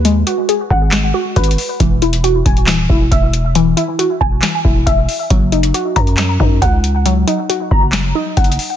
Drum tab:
HH |x-----x-----x-----------x-----------x-x-x-o-----|x-----x--x--x-----x--x--x-----------x-----x-----|x-----x-----x-----------x-----------x-----o-----|x-----x--x--x-----x--x--x-----------x-----x-----|
CP |------------------------x-----------------------|------------------------x-----------------------|------------------------x-----------------------|------------------------x-----------------------|
SD |------------------------o-----------------------|------------------------o-----------------------|------------------------o-----------------------|------------------------o-----------------------|
BD |------------------o-----------------o-----------|o-----------------o-----------o-----o-----------|------------------o-----------o-----o-----------|o-----------------o-----------o-----o-----------|

HH |x-----x-----x-----------x-----------x-x-x-o-----|
CP |------------------------x-----------------------|
SD |------------------------o-----------------------|
BD |------------------o-----------------o-----------|